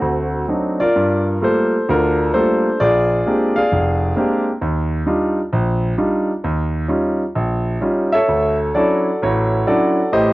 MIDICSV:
0, 0, Header, 1, 2, 480
1, 0, Start_track
1, 0, Tempo, 463679
1, 990, Time_signature, 4, 2, 24, 8
1, 3377, Tempo, 453515
1, 6737, Tempo, 460829
1, 10794, End_track
2, 0, Start_track
2, 0, Title_t, "Grand piano"
2, 0, Program_c, 0, 0
2, 0, Note_on_c, 0, 57, 43
2, 0, Note_on_c, 0, 60, 42
2, 0, Note_on_c, 0, 66, 60
2, 17, Note_on_c, 0, 38, 57
2, 440, Note_off_c, 0, 38, 0
2, 459, Note_off_c, 0, 66, 0
2, 487, Note_off_c, 0, 60, 0
2, 503, Note_on_c, 0, 60, 40
2, 504, Note_on_c, 0, 54, 44
2, 505, Note_on_c, 0, 62, 38
2, 511, Note_on_c, 0, 63, 46
2, 794, Note_off_c, 0, 57, 0
2, 829, Note_on_c, 0, 74, 84
2, 838, Note_on_c, 0, 65, 61
2, 846, Note_off_c, 0, 54, 0
2, 846, Note_off_c, 0, 60, 0
2, 846, Note_on_c, 0, 70, 58
2, 847, Note_off_c, 0, 62, 0
2, 850, Note_off_c, 0, 63, 0
2, 990, Note_on_c, 0, 43, 59
2, 1277, Note_off_c, 0, 74, 0
2, 1408, Note_off_c, 0, 43, 0
2, 1456, Note_off_c, 0, 65, 0
2, 1463, Note_on_c, 0, 57, 39
2, 1466, Note_on_c, 0, 55, 45
2, 1471, Note_on_c, 0, 58, 42
2, 1472, Note_on_c, 0, 65, 53
2, 1478, Note_on_c, 0, 69, 51
2, 1491, Note_on_c, 0, 72, 70
2, 1759, Note_off_c, 0, 70, 0
2, 1804, Note_off_c, 0, 57, 0
2, 1806, Note_off_c, 0, 55, 0
2, 1808, Note_off_c, 0, 58, 0
2, 1809, Note_off_c, 0, 65, 0
2, 1954, Note_on_c, 0, 38, 67
2, 1968, Note_on_c, 0, 70, 77
2, 1969, Note_on_c, 0, 62, 58
2, 1969, Note_on_c, 0, 65, 57
2, 1974, Note_off_c, 0, 72, 0
2, 2365, Note_off_c, 0, 38, 0
2, 2388, Note_off_c, 0, 69, 0
2, 2420, Note_off_c, 0, 65, 0
2, 2421, Note_on_c, 0, 55, 51
2, 2421, Note_on_c, 0, 72, 74
2, 2428, Note_on_c, 0, 57, 46
2, 2428, Note_on_c, 0, 69, 55
2, 2434, Note_on_c, 0, 58, 45
2, 2435, Note_on_c, 0, 65, 51
2, 2449, Note_off_c, 0, 70, 0
2, 2758, Note_off_c, 0, 55, 0
2, 2762, Note_off_c, 0, 57, 0
2, 2765, Note_off_c, 0, 58, 0
2, 2766, Note_off_c, 0, 65, 0
2, 2869, Note_off_c, 0, 69, 0
2, 2870, Note_off_c, 0, 62, 0
2, 2899, Note_on_c, 0, 74, 94
2, 2903, Note_on_c, 0, 34, 60
2, 2909, Note_on_c, 0, 65, 66
2, 2910, Note_on_c, 0, 68, 68
2, 2913, Note_off_c, 0, 72, 0
2, 3316, Note_off_c, 0, 34, 0
2, 3379, Note_on_c, 0, 58, 45
2, 3381, Note_on_c, 0, 60, 44
2, 3382, Note_on_c, 0, 56, 48
2, 3383, Note_on_c, 0, 62, 43
2, 3389, Note_on_c, 0, 67, 54
2, 3690, Note_on_c, 0, 77, 83
2, 3693, Note_off_c, 0, 68, 0
2, 3698, Note_off_c, 0, 74, 0
2, 3709, Note_on_c, 0, 68, 64
2, 3714, Note_on_c, 0, 74, 63
2, 3720, Note_off_c, 0, 58, 0
2, 3721, Note_off_c, 0, 60, 0
2, 3722, Note_off_c, 0, 56, 0
2, 3722, Note_off_c, 0, 62, 0
2, 3725, Note_off_c, 0, 67, 0
2, 3823, Note_off_c, 0, 65, 0
2, 3861, Note_on_c, 0, 29, 64
2, 4277, Note_off_c, 0, 29, 0
2, 4327, Note_on_c, 0, 56, 54
2, 4334, Note_on_c, 0, 58, 51
2, 4335, Note_on_c, 0, 60, 47
2, 4335, Note_on_c, 0, 62, 48
2, 4340, Note_on_c, 0, 67, 59
2, 4610, Note_off_c, 0, 77, 0
2, 4619, Note_off_c, 0, 68, 0
2, 4622, Note_off_c, 0, 74, 0
2, 4668, Note_off_c, 0, 56, 0
2, 4672, Note_off_c, 0, 58, 0
2, 4672, Note_off_c, 0, 60, 0
2, 4672, Note_off_c, 0, 62, 0
2, 4675, Note_off_c, 0, 67, 0
2, 4809, Note_on_c, 0, 39, 64
2, 5226, Note_off_c, 0, 39, 0
2, 5281, Note_on_c, 0, 55, 51
2, 5286, Note_on_c, 0, 62, 47
2, 5286, Note_on_c, 0, 63, 49
2, 5292, Note_on_c, 0, 65, 56
2, 5623, Note_off_c, 0, 55, 0
2, 5625, Note_off_c, 0, 62, 0
2, 5626, Note_off_c, 0, 63, 0
2, 5629, Note_off_c, 0, 65, 0
2, 5775, Note_on_c, 0, 34, 70
2, 6192, Note_off_c, 0, 34, 0
2, 6250, Note_on_c, 0, 55, 51
2, 6255, Note_on_c, 0, 62, 48
2, 6256, Note_on_c, 0, 63, 45
2, 6257, Note_on_c, 0, 65, 52
2, 6592, Note_off_c, 0, 55, 0
2, 6595, Note_off_c, 0, 62, 0
2, 6596, Note_off_c, 0, 63, 0
2, 6596, Note_off_c, 0, 65, 0
2, 6741, Note_on_c, 0, 39, 62
2, 7154, Note_off_c, 0, 39, 0
2, 7201, Note_on_c, 0, 61, 46
2, 7203, Note_on_c, 0, 55, 47
2, 7207, Note_on_c, 0, 63, 42
2, 7210, Note_on_c, 0, 65, 53
2, 7547, Note_off_c, 0, 55, 0
2, 7547, Note_off_c, 0, 61, 0
2, 7550, Note_off_c, 0, 63, 0
2, 7551, Note_off_c, 0, 65, 0
2, 7691, Note_on_c, 0, 34, 66
2, 8113, Note_off_c, 0, 34, 0
2, 8167, Note_on_c, 0, 55, 50
2, 8169, Note_on_c, 0, 61, 45
2, 8175, Note_on_c, 0, 63, 44
2, 8175, Note_on_c, 0, 65, 55
2, 8495, Note_on_c, 0, 76, 93
2, 8511, Note_on_c, 0, 69, 70
2, 8514, Note_on_c, 0, 73, 67
2, 8516, Note_off_c, 0, 55, 0
2, 8517, Note_off_c, 0, 61, 0
2, 8520, Note_off_c, 0, 63, 0
2, 8520, Note_off_c, 0, 65, 0
2, 8660, Note_on_c, 0, 38, 58
2, 8953, Note_off_c, 0, 76, 0
2, 9085, Note_off_c, 0, 38, 0
2, 9142, Note_off_c, 0, 69, 0
2, 9143, Note_on_c, 0, 74, 74
2, 9150, Note_on_c, 0, 54, 51
2, 9150, Note_on_c, 0, 62, 45
2, 9151, Note_on_c, 0, 61, 45
2, 9156, Note_on_c, 0, 64, 56
2, 9157, Note_on_c, 0, 69, 54
2, 9161, Note_on_c, 0, 66, 49
2, 9437, Note_off_c, 0, 73, 0
2, 9489, Note_off_c, 0, 54, 0
2, 9489, Note_off_c, 0, 62, 0
2, 9490, Note_off_c, 0, 61, 0
2, 9492, Note_off_c, 0, 64, 0
2, 9594, Note_off_c, 0, 74, 0
2, 9635, Note_off_c, 0, 66, 0
2, 9637, Note_on_c, 0, 33, 70
2, 9647, Note_on_c, 0, 73, 79
2, 9651, Note_on_c, 0, 66, 58
2, 9652, Note_on_c, 0, 64, 55
2, 10048, Note_off_c, 0, 33, 0
2, 10068, Note_off_c, 0, 69, 0
2, 10097, Note_off_c, 0, 66, 0
2, 10100, Note_off_c, 0, 64, 0
2, 10105, Note_on_c, 0, 69, 53
2, 10107, Note_on_c, 0, 61, 50
2, 10107, Note_on_c, 0, 74, 75
2, 10111, Note_on_c, 0, 54, 52
2, 10113, Note_on_c, 0, 66, 56
2, 10114, Note_on_c, 0, 62, 46
2, 10116, Note_on_c, 0, 64, 56
2, 10129, Note_off_c, 0, 73, 0
2, 10439, Note_off_c, 0, 61, 0
2, 10442, Note_off_c, 0, 54, 0
2, 10443, Note_off_c, 0, 62, 0
2, 10444, Note_off_c, 0, 64, 0
2, 10546, Note_off_c, 0, 69, 0
2, 10547, Note_off_c, 0, 74, 0
2, 10550, Note_off_c, 0, 66, 0
2, 10580, Note_on_c, 0, 33, 59
2, 10581, Note_on_c, 0, 45, 60
2, 10586, Note_on_c, 0, 75, 90
2, 10587, Note_on_c, 0, 72, 70
2, 10588, Note_on_c, 0, 67, 67
2, 10794, Note_off_c, 0, 33, 0
2, 10794, Note_off_c, 0, 45, 0
2, 10794, Note_off_c, 0, 67, 0
2, 10794, Note_off_c, 0, 72, 0
2, 10794, Note_off_c, 0, 75, 0
2, 10794, End_track
0, 0, End_of_file